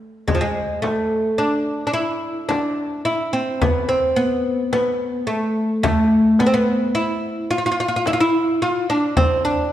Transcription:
0.28 0.35 G#3 medium
0.28 frame drum medium
0.28 darbuka dum medium
0.35 0.42 F3 medium
0.41 0.82 G#3 medium
0.82 1.40 A3 medium
0.82 darbuka tek medium
0.82 frame drum medium
1.38 1.86 D4 medium
1.87 1.93 D4 medium
1.94 2.48 E4 medium
2.49 3.05 D4 medium
2.49 darbuka tek medium
2.49 frame drum medium
2.79 darbuka ka soft
3.05 3.33 E4 medium
3.33 3.62 C4 medium
3.33 darbuka ka soft
3.61 3.90 B3 medium
3.61 frame drum medium
3.61 darbuka dum medium
3.89 4.17 C4 medium
4.16 4.72 B3 medium
4.73 5.27 B3 medium
4.73 darbuka tek medium
4.73 frame drum medium
5.27 5.82 A3 medium
5.83 6.40 A3 medium
5.83 frame drum medium
5.83 darbuka dum medium
6.39 6.46 B3 medium
6.39 darbuka tek medium
6.39 frame drum medium
6.46 6.53 C4 medium
6.54 6.92 B3 medium
6.95 7.50 E4 medium
7.51 7.57 F4 medium
7.58 7.65 F4 medium
7.66 7.70 F4 medium
7.72 7.79 F4 medium
7.80 7.87 F4 medium
7.88 7.95 F4 medium
7.96 8.03 F4 medium
8.06 8.13 E4 medium
8.06 darbuka tek medium
8.06 frame drum medium
8.13 8.20 F4 medium
8.21 8.62 E4 medium
8.34 darbuka ka soft
8.62 8.89 F4 medium
8.89 9.16 D4 medium
8.89 darbuka ka soft
9.17 9.44 C4 medium
9.17 darbuka dum medium
9.17 frame drum medium
9.45 9.73 D4 medium

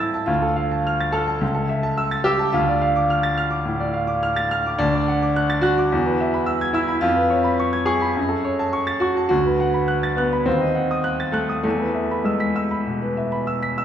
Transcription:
0.00 0.31 E3 soft
0.00 0.27 E4 medium
0.00 0.31 A4 soft
0.00 0.31 E5 medium
0.00 0.14 A5 medium
0.00 0.31 E6 medium
0.00 0.31 A6 medium
0.14 0.28 A5 soft
0.26 1.38 D2 medium
0.26 1.13 F4 medium
0.42 0.65 A4 medium
0.56 0.80 F5 medium
0.71 0.94 A5 medium
0.87 1.09 F6 medium
1.00 1.23 A6 medium
1.12 1.53 A4 medium
1.12 1.36 F6 medium
1.27 1.42 A5 medium
1.41 2.51 C#2 medium
1.55 1.78 A4 soft
1.69 1.92 E5 medium
1.83 2.06 A5 medium
1.97 2.21 E6 medium
2.11 2.34 A6 medium
2.24 2.53 G4 medium
2.24 2.49 E6 medium
2.39 2.54 A5 medium
2.53 3.63 D2 medium
2.53 4.22 F4 medium
2.69 2.91 D5 medium
2.81 3.05 F5 medium
2.96 3.19 D6 medium
3.10 3.33 F6 medium
3.23 3.46 A6 medium
3.37 3.60 F6 medium
3.50 3.74 D6 medium
3.65 3.88 A2 medium
3.80 4.03 D5 medium
3.93 4.16 F5 medium
4.07 4.31 D6 medium
4.23 4.46 F6 medium
4.36 4.60 A6 medium
4.51 4.74 F6 medium
4.66 4.80 D6 medium
4.79 5.89 D2 medium
4.79 5.63 D4 loud
4.95 5.17 D5 medium
5.08 5.30 F#5 medium
5.22 5.44 D6 medium
5.36 5.59 F#6 medium
5.50 5.72 A6 medium
5.62 6.74 F#4 medium
5.62 5.86 F#6 medium
5.78 5.92 D6 medium
5.92 7.00 E2 medium
6.06 6.28 B4 medium
6.20 6.43 E5 medium
6.34 6.56 B5 medium
6.46 6.69 E6 medium
6.61 6.84 G#6 medium
6.73 7.02 E4 medium
6.73 6.97 E6 medium
6.88 7.03 B5 medium
7.01 8.13 F2 medium
7.01 7.87 F4 medium
7.16 7.39 B4 medium
7.30 7.54 C#5 medium
7.44 7.68 B5 medium
7.59 7.83 C#6 medium
7.73 7.96 G#6 medium
7.86 9.01 G#4 medium
7.86 8.10 C#6 medium
8.02 8.17 B5 medium
8.17 9.28 F#2 medium
8.29 8.53 A4 medium
8.45 8.68 C#5 medium
8.59 8.82 A5 medium
8.73 8.96 C#6 medium
8.87 9.11 A6 medium
9.00 9.27 F#4 medium
9.00 9.25 C#6 medium
9.17 9.31 A5 medium
9.29 10.42 D2 medium
9.29 10.16 F#4 medium
9.46 9.69 B4 medium
9.60 9.83 F#5 medium
9.74 9.97 B5 medium
9.88 10.11 F#6 medium
10.03 10.26 A6 medium
10.17 10.46 B3 medium
10.17 10.41 F#6 medium
10.33 10.47 B5 medium
10.46 11.61 D#2 medium
10.46 11.34 C4 medium
10.61 10.84 D#5 medium
10.75 10.98 F#5 soft
10.91 11.14 D#6 medium
11.04 11.28 F#6 medium
11.20 11.44 A6 medium
11.32 11.62 A3 medium
11.32 11.58 F#6 medium
11.49 11.64 D#6 soft
11.63 12.82 E2 medium
11.63 12.25 A3 medium
11.80 12.04 B4 soft
11.94 12.19 E5 soft
12.11 12.35 B5 soft
12.24 13.76 G#3 medium
12.24 12.50 E6 medium
12.40 12.65 B6 medium
12.56 12.80 E6 soft
12.71 12.95 B5 soft
12.87 13.10 B2 soft
13.02 13.26 B4 soft
13.17 13.41 E5 soft
13.32 13.56 B5 medium
13.47 13.71 E6 medium
13.62 13.85 B6 medium
13.78 13.85 E6 medium

